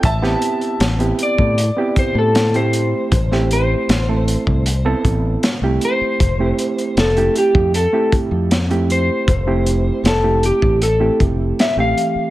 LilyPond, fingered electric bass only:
\new Staff \with { instrumentName = "Fingered electric bass" } { \clef bass \time 4/4 \key a \minor \tempo 4 = 78 a,,8 r8 a,,8 r16 a,8 r8 a,4~ a,16 | a,,4 a,,8. c,8. a,,8 r16 c,16 r8 | f,,8 r8 f,,8 r16 f,8 r8 f,4~ f,16 | f,,4 f,,8. a,,8. f,,8 r16 a,,16 r8 | }